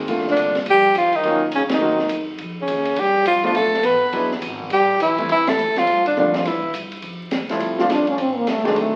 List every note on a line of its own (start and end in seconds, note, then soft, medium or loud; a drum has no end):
0.08 0.36 A#1 medium
0.08 0.52 D3 medium
0.08 0.52 A3 medium
0.08 0.52 A#3 medium
0.08 0.52 C4 medium
0.08 0.52 F4 medium
0.08 kick soft
0.08 ride medium
0.18 snare soft
0.27 0.54 D3 medium
0.27 snare soft
0.31 0.56 D4 loud
0.37 0.65 C2 medium
0.37 kick soft
0.37 hi-hat pedal medium
0.37 ride medium
0.55 snare soft
0.55 ride medium
0.66 0.94 F2 medium
0.66 0.95 G3 medium
0.66 kick soft
0.66 ride medium
0.70 0.95 G4 loud
0.95 1.12 E2 medium
0.95 1.15 F3 medium
0.95 1.17 F4 loud
0.95 kick soft
0.95 hi-hat pedal medium
0.95 ride medium
1.13 1.42 D#3 medium
1.13 1.44 D#4 medium
1.13 muted upright bass stroke soft
1.13 ride soft
1.23 1.52 D#2 medium
1.23 1.41 D#3 medium
1.23 1.41 F#3 medium
1.23 1.41 A#3 medium
1.23 1.41 C#4 medium
1.23 1.41 F4 medium
1.23 kick soft
1.23 ride medium
1.52 1.81 A#2 medium
1.52 1.63 C#3 medium
1.52 1.63 C#4 medium
1.52 kick soft
1.52 hi-hat pedal medium
1.52 ride medium
1.69 2.25 D#3 medium
1.69 snare medium
1.69 ride medium
1.73 2.26 D#4 medium
1.81 2.10 G#2 medium
1.81 1.98 D#3 medium
1.81 1.98 F#3 medium
1.81 1.98 A#3 medium
1.81 1.98 C4 medium
1.81 1.98 F#4 medium
1.99 snare soft
2.09 2.38 F#2 medium
2.09 kick soft
2.09 hi-hat pedal medium
2.09 ride medium
2.38 2.67 F2 medium
2.38 kick soft
2.38 ride medium
2.60 3.00 C#3 medium
2.60 3.01 C#4 medium
2.68 2.96 D#2 loud
2.68 kick soft
2.68 hi-hat pedal medium
2.68 ride medium
2.85 ride soft
2.96 3.06 C#2 medium
2.96 3.26 G3 medium
2.96 3.27 G4 loud
2.96 kick soft
2.96 ride medium
3.06 3.15 C2 medium
3.15 3.25 G#1 medium
3.26 3.54 C2 medium
3.26 3.43 F3 medium
3.26 3.44 F4 loud
3.26 kick soft
3.26 hi-hat pedal medium
3.26 ride medium
3.44 3.54 F3 medium
3.44 3.53 F3 medium
3.44 3.54 A3 medium
3.44 3.54 B3 medium
3.44 3.55 D4 medium
3.44 3.54 F4 medium
3.44 3.56 F4 medium
3.44 ride soft
3.54 3.83 B1 medium
3.54 3.85 A3 medium
3.54 3.87 A4 loud
3.54 kick soft
3.54 ride medium
3.74 snare soft
3.83 3.95 A1 loud
3.83 4.31 B3 medium
3.83 4.32 B4 loud
3.83 kick soft
3.83 hi-hat pedal medium
3.83 ride medium
3.93 4.03 F1 medium
4.03 4.12 D1 medium
4.13 4.41 E1 medium
4.13 4.30 F#3 medium
4.13 4.30 G#3 medium
4.13 4.30 B3 medium
4.13 4.30 D4 medium
4.13 4.30 E4 medium
4.13 kick soft
4.13 ride medium
4.31 snare soft
4.42 4.70 G#1 medium
4.42 kick soft
4.42 hi-hat pedal medium
4.42 ride medium
4.60 kick soft
4.70 4.99 A1 medium
4.70 4.98 G3 medium
4.70 4.99 G4 loud
4.70 kick soft
4.70 ride medium
5.00 5.28 B1 medium
5.00 5.27 E3 medium
5.00 5.28 E4 medium
5.00 kick soft
5.00 hi-hat pedal medium
5.00 ride medium
5.18 5.28 E3 medium
5.18 5.28 G3 medium
5.18 5.28 A3 medium
5.18 5.28 C4 medium
5.18 5.28 E4 medium
5.18 kick medium
5.18 ride soft
5.29 5.39 C2 medium
5.29 5.52 E3 medium
5.29 5.51 E4 loud
5.29 kick soft
5.29 ride medium
5.39 5.49 A1 medium
5.47 5.57 G1 medium
5.47 5.80 A3 medium
5.47 5.80 A4 loud
5.47 snare medium
5.47 ride medium
5.58 5.86 E2 medium
5.58 hi-hat pedal medium
5.76 6.05 F3 medium
5.76 6.06 F4 loud
5.76 snare medium
5.76 ride soft
5.87 6.16 G2 medium
5.87 kick soft
5.87 ride medium
6.05 6.15 D3 medium
6.05 6.17 D4 medium
6.05 ride medium
6.16 6.45 F2 loud
6.16 6.36 D3 medium
6.16 6.45 D3 medium
6.16 6.46 G3 medium
6.16 6.46 A3 medium
6.16 6.46 A#3 medium
6.16 6.38 D4 medium
6.16 6.46 F4 medium
6.16 kick soft
6.16 hi-hat pedal soft
6.34 6.48 F3 medium
6.34 6.49 F4 medium
6.34 snare medium
6.34 ride soft
6.45 6.73 C2 medium
6.45 6.75 E3 medium
6.45 6.75 E4 medium
6.45 kick soft
6.45 snare soft
6.45 ride medium
6.63 kick medium
6.74 7.02 G2 medium
6.74 kick soft
6.74 hi-hat pedal medium
6.74 ride medium
6.92 ride medium
7.02 7.31 F2 medium
7.02 kick soft
7.02 ride medium
7.31 7.60 E2 medium
7.31 kick soft
7.31 snare medium
7.31 hi-hat pedal medium
7.31 ride medium
7.49 7.77 F3 medium
7.49 7.77 G3 medium
7.49 7.78 A3 medium
7.49 7.77 C4 medium
7.49 7.78 E4 medium
7.49 snare soft
7.49 ride soft
7.60 7.89 C2 medium
7.60 kick soft
7.60 ride medium
7.78 8.17 F3 medium
7.78 8.17 G3 medium
7.78 8.17 A3 medium
7.78 8.17 C4 medium
7.78 8.18 D4 medium
7.78 7.93 F4 medium
7.78 snare medium
7.90 8.17 F1 medium
7.90 8.08 D4 medium
7.90 kick soft
7.90 snare medium
7.90 hi-hat pedal medium
7.90 ride medium
8.07 8.21 C#4 medium
8.07 ride soft
8.18 8.46 A1 medium
8.18 8.37 C4 medium
8.18 kick soft
8.18 ride medium
8.36 8.50 A#3 medium
8.47 8.75 C2 loud
8.47 8.67 A3 medium
8.47 kick soft
8.47 snare medium
8.47 hi-hat pedal medium
8.47 ride medium
8.57 snare soft
8.64 8.92 D#3 medium
8.64 8.92 F#3 medium
8.64 8.80 G#3 medium
8.64 8.92 A3 medium
8.64 8.92 C4 medium
8.64 8.93 D4 medium
8.64 snare soft
8.64 ride soft
8.76 8.96 D2 medium
8.76 8.96 A3 medium
8.76 kick soft
8.76 ride medium